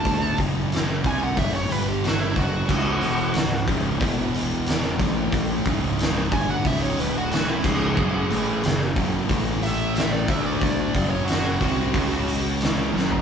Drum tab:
CC |----------------|x---------------|--------------x-|----------------|
HH |o-o-o-o-o-o-o-o-|--o-o-o-o-o-o-o-|o-o-o-o-o-o-o---|--o-o-o-o-o-o-o-|
SD |----o-------o---|----o-------o---|----o-------o---|----o-------o---|
FT |----------------|----------------|----------------|----------------|
BD |o-o---o-o-----o-|o-----o-o-----o-|o-o---o-o-----o-|o-----o-o-----o-|

CC |----------------|
HH |o-o-o-o-o-o-o---|
SD |----o-------o-o-|
FT |---------------o|
BD |o-o---o-o-------|